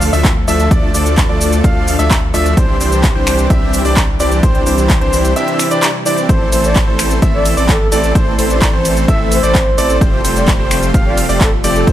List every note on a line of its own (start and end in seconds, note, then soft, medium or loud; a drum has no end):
0.00 0.11 D2 loud
0.00 2.53 D3 medium
0.00 0.10 F3 medium
0.00 2.54 F3 medium
0.00 0.10 A3 medium
0.00 2.53 A3 medium
0.00 0.10 D4 medium
0.00 0.69 F4 medium
0.00 0.10 A4 medium
0.00 2.53 A4 medium
0.00 0.10 F5 loud
0.00 open hi-hat loud
0.00 shaker medium
0.13 0.45 D2 loud
0.13 0.31 F3 loud
0.13 0.31 A3 medium
0.13 0.31 D4 medium
0.13 0.31 A4 medium
0.13 0.31 E5 loud
0.13 open hi-hat medium
0.13 shaker soft
0.25 kick loud
0.25 clap loud
0.25 closed hi-hat medium
0.25 shaker soft
0.48 0.69 D2 loud
0.48 0.68 F3 medium
0.48 0.68 A3 medium
0.48 0.68 D4 medium
0.48 0.68 A4 medium
0.48 0.68 E5 loud
0.48 open hi-hat loud
0.48 shaker medium
0.60 closed hi-hat medium
0.60 shaker soft
0.71 0.92 D2 loud
0.71 0.91 F3 medium
0.71 0.91 A3 medium
0.71 0.91 D4 medium
0.71 0.91 A4 medium
0.71 0.91 D5 loud
0.71 kick loud
0.71 closed hi-hat medium
0.71 shaker soft
0.94 1.27 D2 loud
0.94 1.26 F3 medium
0.94 1.26 A3 medium
0.94 1.26 D4 medium
0.94 1.26 A4 medium
0.94 1.26 D5 medium
0.94 open hi-hat loud
0.94 shaker medium
1.06 closed hi-hat medium
1.06 shaker soft
1.18 kick loud
1.18 clap loud
1.18 closed hi-hat medium
1.18 shaker soft
1.29 1.62 D2 loud
1.29 1.61 F3 medium
1.29 1.61 A3 medium
1.29 1.61 D4 medium
1.29 1.61 A4 medium
1.29 1.61 D5 medium
1.41 open hi-hat loud
1.41 shaker medium
1.53 closed hi-hat medium
1.53 shaker soft
1.64 1.97 D2 loud
1.64 1.96 F3 medium
1.64 1.96 A3 medium
1.64 1.96 D4 medium
1.64 1.96 A4 medium
1.64 1.96 F5 medium
1.64 1.96 F5 loud
1.64 kick loud
1.64 closed hi-hat medium
1.64 shaker soft
1.88 open hi-hat loud
1.88 shaker medium
1.99 2.32 D2 loud
1.99 2.17 F3 loud
1.99 2.17 A3 medium
1.99 2.17 D4 medium
1.99 2.17 A4 medium
1.99 2.17 E5 loud
1.99 closed hi-hat medium
1.99 shaker soft
2.11 kick loud
2.11 clap loud
2.11 closed hi-hat medium
2.11 shaker soft
2.34 2.55 D2 loud
2.34 2.54 F3 medium
2.34 2.54 A3 medium
2.34 2.54 D4 medium
2.34 2.54 A4 medium
2.34 2.54 E5 loud
2.34 open hi-hat loud
2.34 shaker medium
2.46 closed hi-hat medium
2.46 shaker soft
2.57 2.78 C2 loud
2.57 11.92 C3 medium
2.57 2.77 E3 medium
2.57 9.97 E3 medium
2.57 6.26 G3 medium
2.57 2.77 C4 medium
2.57 2.77 D4 medium
2.57 4.41 D4 medium
2.57 2.77 G4 medium
2.57 6.26 G4 medium
2.57 2.77 C5 loud
2.57 kick loud
2.57 closed hi-hat medium
2.57 shaker soft
2.80 3.13 C2 loud
2.80 3.13 E3 medium
2.80 3.13 C4 medium
2.80 3.13 D4 medium
2.80 3.13 G4 medium
2.80 3.13 C5 medium
2.80 open hi-hat loud
2.80 shaker medium
2.92 closed hi-hat medium
2.92 shaker soft
3.04 kick loud
3.04 clap loud
3.04 closed hi-hat medium
3.04 shaker soft
3.15 3.48 C2 loud
3.15 3.47 E3 medium
3.15 3.47 C4 medium
3.15 3.47 D4 medium
3.15 3.47 G4 medium
3.15 3.47 C5 medium
3.27 finger snap medium
3.27 open hi-hat loud
3.27 shaker medium
3.39 closed hi-hat medium
3.39 shaker soft
3.50 3.83 C2 loud
3.50 3.82 E3 medium
3.50 3.82 C4 medium
3.50 3.82 D4 medium
3.50 3.82 G4 medium
3.50 3.82 E5 loud
3.50 kick loud
3.50 closed hi-hat medium
3.50 shaker soft
3.73 open hi-hat loud
3.73 shaker medium
3.85 4.18 C2 loud
3.85 4.03 E3 loud
3.85 4.03 C4 medium
3.85 4.03 D4 medium
3.85 4.03 G4 medium
3.85 4.03 D5 loud
3.85 open hi-hat medium
3.85 shaker soft
3.97 kick loud
3.97 clap loud
3.97 closed hi-hat medium
3.97 shaker soft
4.20 4.41 C2 loud
4.20 4.40 E3 loud
4.20 4.40 C4 medium
4.20 4.40 D4 medium
4.20 4.40 G4 medium
4.20 4.40 D5 loud
4.20 open hi-hat loud
4.20 shaker medium
4.32 closed hi-hat medium
4.32 shaker soft
4.43 4.64 C2 loud
4.43 4.63 E3 medium
4.43 4.63 C4 medium
4.43 4.63 D4 medium
4.43 9.97 E4 medium
4.43 4.63 G4 medium
4.43 4.63 C5 loud
4.43 kick loud
4.43 closed hi-hat medium
4.43 shaker soft
4.55 closed hi-hat soft
4.66 4.99 C2 loud
4.66 4.99 E3 medium
4.66 4.99 C4 medium
4.66 4.99 D4 medium
4.66 4.99 G4 medium
4.66 4.99 C5 medium
4.66 open hi-hat loud
4.66 shaker medium
4.78 closed hi-hat medium
4.78 shaker soft
4.90 kick loud
4.90 clap loud
4.90 closed hi-hat medium
4.90 shaker soft
5.01 5.34 C2 loud
5.01 5.33 E3 medium
5.01 5.33 C4 medium
5.01 5.33 D4 medium
5.01 5.33 G4 medium
5.01 5.33 C5 medium
5.01 closed hi-hat soft
5.13 open hi-hat loud
5.13 shaker medium
5.25 closed hi-hat medium
5.25 shaker soft
5.36 5.68 E3 medium
5.36 5.68 C4 medium
5.36 5.68 D4 medium
5.36 5.68 G4 medium
5.36 5.68 E5 loud
5.36 closed hi-hat medium
5.36 shaker soft
5.48 closed hi-hat soft
5.59 finger snap medium
5.59 open hi-hat loud
5.59 shaker medium
5.71 5.89 E3 loud
5.71 5.89 C4 medium
5.71 5.89 D4 medium
5.71 5.89 G4 medium
5.71 5.89 D5 loud
5.71 closed hi-hat medium
5.71 shaker soft
5.83 clap loud
5.83 closed hi-hat medium
5.83 shaker soft
6.06 6.26 E3 loud
6.06 6.27 C4 medium
6.06 6.26 D4 medium
6.06 6.26 G4 medium
6.06 6.26 D5 loud
6.06 open hi-hat loud
6.06 shaker medium
6.18 closed hi-hat medium
6.18 shaker soft
6.29 6.50 A1 loud
6.29 6.49 E3 medium
6.29 11.92 A3 medium
6.29 6.49 A3 medium
6.29 6.49 C4 medium
6.29 11.83 A4 medium
6.29 6.49 A4 medium
6.29 6.49 C5 loud
6.29 kick loud
6.29 closed hi-hat medium
6.29 shaker soft
6.52 6.85 A1 loud
6.52 6.85 E3 medium
6.52 6.85 A3 medium
6.52 6.85 C4 medium
6.52 6.85 A4 medium
6.52 6.85 C5 medium
6.52 open hi-hat loud
6.52 ride medium
6.52 shaker medium
6.64 6.75 D5 loud
6.64 closed hi-hat medium
6.64 shaker soft
6.76 kick loud
6.76 clap loud
6.76 closed hi-hat medium
6.76 shaker soft
6.87 7.20 A1 loud
6.87 7.19 E3 medium
6.87 7.19 A3 medium
6.87 7.19 C4 medium
6.87 7.19 A4 medium
6.87 7.19 C5 medium
6.99 finger snap medium
6.99 open hi-hat loud
6.99 ride medium
6.99 shaker medium
7.11 closed hi-hat medium
7.11 shaker soft
7.22 7.55 A1 loud
7.22 7.54 E3 medium
7.22 7.54 A3 medium
7.22 7.54 C4 medium
7.22 7.54 A4 medium
7.22 7.54 E5 loud
7.22 kick loud
7.22 closed hi-hat medium
7.22 shaker soft
7.34 7.45 D5 loud
7.45 open hi-hat loud
7.45 ride medium
7.45 shaker medium
7.57 7.90 A1 loud
7.57 7.75 E3 loud
7.57 7.75 A3 medium
7.57 7.75 C4 medium
7.57 7.75 A4 medium
7.57 7.75 D5 loud
7.57 open hi-hat medium
7.57 shaker soft
7.68 7.78 A4 medium
7.68 kick loud
7.68 clap loud
7.68 closed hi-hat medium
7.68 shaker soft
7.80 7.88 A4 medium
7.92 8.13 A1 loud
7.92 8.12 E3 medium
7.92 8.12 A3 medium
7.92 8.12 C4 medium
7.92 8.12 A4 medium
7.92 8.00 A4 medium
7.92 8.12 D5 loud
7.92 open hi-hat loud
7.92 ride medium
7.92 shaker medium
8.04 closed hi-hat medium
8.04 shaker soft
8.15 8.36 A1 loud
8.15 8.35 E3 medium
8.15 8.35 A3 medium
8.15 8.35 C4 medium
8.15 8.35 A4 medium
8.15 8.35 C5 loud
8.15 kick loud
8.15 closed hi-hat medium
8.15 shaker soft
8.38 8.71 A1 loud
8.38 8.71 E3 medium
8.38 8.71 A3 medium
8.38 8.71 C4 medium
8.38 8.71 A4 medium
8.38 8.71 C5 medium
8.38 open hi-hat loud
8.38 ride medium
8.38 shaker medium
8.50 8.58 D5 medium
8.50 closed hi-hat medium
8.50 shaker soft
8.62 8.69 D5 medium
8.62 kick loud
8.62 clap loud
8.62 closed hi-hat medium
8.62 shaker soft
8.73 9.06 A1 loud
8.73 9.06 E3 medium
8.73 9.06 A3 medium
8.73 9.06 C4 medium
8.73 9.05 A4 medium
8.73 9.06 C5 medium
8.85 open hi-hat loud
8.85 ride medium
8.85 shaker medium
8.97 closed hi-hat medium
8.97 shaker soft
9.08 9.41 A1 loud
9.08 9.40 E3 medium
9.08 9.40 A3 medium
9.08 9.40 C4 medium
9.08 9.40 A4 medium
9.08 9.40 E5 loud
9.08 9.20 E5 medium
9.08 9.40 E5 loud
9.08 kick loud
9.08 closed hi-hat medium
9.08 shaker soft
9.31 9.97 C5 loud
9.31 open hi-hat loud
9.31 ride medium
9.31 shaker medium
9.43 9.76 A1 loud
9.43 9.61 E3 loud
9.43 9.61 A3 medium
9.43 9.61 C4 medium
9.43 9.61 A4 medium
9.43 9.61 D5 loud
9.43 closed hi-hat medium
9.43 shaker soft
9.55 kick loud
9.55 clap loud
9.55 closed hi-hat medium
9.55 shaker soft
9.78 9.99 A1 loud
9.78 9.98 E3 medium
9.78 9.98 A3 medium
9.78 9.98 C4 medium
9.78 9.98 A4 medium
9.78 9.98 D5 loud
9.78 open hi-hat loud
9.78 ride medium
9.78 shaker medium
9.90 closed hi-hat medium
9.90 shaker soft
10.01 10.22 F1 loud
10.01 10.21 F3 medium
10.01 11.92 G3 medium
10.01 10.21 A3 medium
10.01 10.21 C4 medium
10.01 11.92 F4 medium
10.01 10.21 G4 medium
10.01 10.21 C5 loud
10.01 kick loud
10.01 closed hi-hat medium
10.01 shaker soft
10.24 10.57 F1 loud
10.24 10.57 F3 medium
10.24 10.57 A3 medium
10.24 10.57 C4 medium
10.24 10.57 G4 medium
10.24 10.57 C5 medium
10.24 open hi-hat loud
10.24 ride medium
10.24 shaker medium
10.36 10.48 D5 loud
10.36 closed hi-hat medium
10.36 shaker soft
10.48 kick loud
10.48 clap loud
10.48 closed hi-hat medium
10.48 shaker soft
10.59 10.92 F1 loud
10.59 10.91 F3 medium
10.59 10.91 A3 medium
10.59 10.91 C4 medium
10.59 10.91 G4 medium
10.59 10.91 C5 medium
10.71 finger snap medium
10.71 open hi-hat loud
10.71 ride medium
10.71 shaker medium
10.83 closed hi-hat medium
10.83 shaker soft
10.94 11.27 F1 loud
10.94 11.26 F3 medium
10.94 11.26 A3 medium
10.94 11.26 C4 medium
10.94 11.26 G4 medium
10.94 11.26 F5 loud
10.94 kick loud
10.94 closed hi-hat medium
10.94 shaker soft
11.06 11.17 D5 medium
11.18 open hi-hat loud
11.18 ride medium
11.18 shaker medium
11.29 11.62 F1 loud
11.29 11.47 F3 loud
11.29 11.47 A3 medium
11.29 11.47 C4 medium
11.29 11.47 G4 medium
11.29 11.47 D5 loud
11.29 open hi-hat medium
11.29 shaker soft
11.41 11.50 A4 medium
11.41 kick loud
11.41 clap loud
11.41 closed hi-hat medium
11.41 shaker soft
11.64 11.85 F1 loud
11.64 11.84 F3 loud
11.64 11.85 A3 medium
11.64 11.85 C4 medium
11.64 11.85 G4 medium
11.64 11.85 D5 loud
11.64 open hi-hat loud
11.64 ride medium
11.64 shaker medium
11.76 11.87 A4 medium
11.76 closed hi-hat medium
11.76 shaker soft
11.87 11.92 F1 loud
11.87 11.92 F3 medium
11.87 11.92 A3 medium
11.87 11.92 C4 medium
11.87 11.92 G4 medium
11.87 11.92 C5 loud
11.87 kick loud
11.87 closed hi-hat medium
11.87 shaker soft